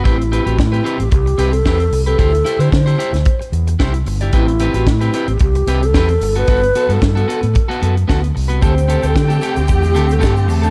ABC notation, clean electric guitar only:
X:1
M:4/4
L:1/16
Q:1/4=112
K:Dmix
V:1 name="Clean electric guitar"
[CGB] z [CGB] [CGB] z [CGB] [CGB] z3 [CGB] z [CGB] z2 [CGB] | [EGc] z [EGc] [EGc] z [EGc] [EGc] z4 z [EGc] z2 [EGd] | [CGB] z [CGB] [CGB] z [CGB] [CGB] z3 [CGB] z [CGB] z2 [B,FA] | [B,FA] z [B,FA] [B,FA] z [B,FA] [B,FA] z2 [B,FA] [B,FA] z [B,FA] z2 [B,FB] |
[CGA] z [CGA] [CGA] z [CGA] [CGA] z3 [CGA] z [CGA] z2 [DGA] |]